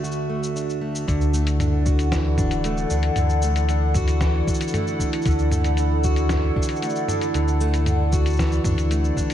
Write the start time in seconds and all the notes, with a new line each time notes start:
Already playing: D2 D3 A3 D4 F#4 E5
0.04 F#4, shaker
0.11 shaker
0.30 A3
0.43 shaker
0.56 D4, shaker
0.70 shaker
0.81 A3
0.95 shaker
1.08 D2 D3 E4 A4 D5 F#5, kick, closed hi-hat, shaker
1.21 shaker
1.34 A3, shaker
1.47 closed hi-hat, shaker
1.60 D4, closed hi-hat, mid tom, shaker
1.86 F#4, kick, shaker
1.99 closed hi-hat, shaker
2.12 E3, kick, snare, closed hi-hat, shaker
2.38 D1 D4, kick, mid tom, shaker
2.51 closed hi-hat, shaker
2.64 A3, closed hi-hat, shaker
2.77 shaker
2.90 D2 D4, shaker
3.03 closed hi-hat
3.16 D2 D3, closed hi-hat, mid tom, shaker
3.29 shaker
3.42 A3, shaker
3.56 closed hi-hat, shaker
3.69 D4, closed hi-hat, shaker
3.94 F#4, kick, mid tom, shaker
4.08 closed hi-hat, shaker
4.21 E3, kick, snare, closed hi-hat, shaker
4.47 D4, kick, shaker
4.54 shaker
4.61 closed hi-hat, shaker
4.68 shaker
4.74 A3, closed hi-hat, mid tom, shaker
4.87 shaker
5.00 D4, kick, shaker
5.13 closed hi-hat, shaker
5.22 closed hi-hat, shaker
5.26 D2 D3, kick, shaker
5.30 shaker
5.39 shaker
5.51 A3, mid tom, shaker
5.64 closed hi-hat, shaker
5.77 D4, closed hi-hat, shaker
6.04 F#4, kick, shaker
6.16 closed hi-hat, shaker
6.29 E3, kick, snare, closed hi-hat, mid tom, shaker
6.56 D4, kick
6.62 shaker
6.69 closed hi-hat, shaker
6.76 shaker
6.82 A3, closed hi-hat, shaker
6.89 shaker
6.96 shaker
7.08 D4, mid tom, shaker
7.21 closed hi-hat, shaker
7.34 D2 D3, closed hi-hat, shaker
7.48 shaker
7.60 A3, shaker
7.74 closed hi-hat, shaker
7.86 D4, closed hi-hat, mid tom, shaker
8.12 F#4, kick, shaker
8.26 closed hi-hat, shaker
8.29 shaker
8.32 shaker
8.36 E3, kick, snare, closed hi-hat, shaker
8.40 shaker
8.42 shaker
8.46 shaker
8.49 shaker
8.52 shaker
8.64 F#2 D4, kick, mid tom, shaker
8.78 D2, closed hi-hat, shaker
8.91 A3, closed hi-hat, shaker
9.04 shaker
9.17 D4, kick, shaker
9.30 closed hi-hat, shaker